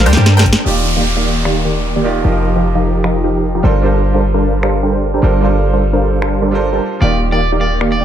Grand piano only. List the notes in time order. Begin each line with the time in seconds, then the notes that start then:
0.64 D#3 D#4 F4 G4 D5
2.04 D#3 D#4 F4 G4 D5
2.23 F3 F4 G4 A#4 D#5
3.63 G3 D4 F4 A4 A#4 C5
3.82 G3 D4 F4 A4 A#4
3.86 C5
5.22 G3 D4 F4 A4 A#4 C5
5.41 G3 D4 F4 A4 A#4 C5
6.51 G3 D4 F4 A4 A#4
6.55 C5
7.00 D#3 D#4 F4 G4
7.04 D5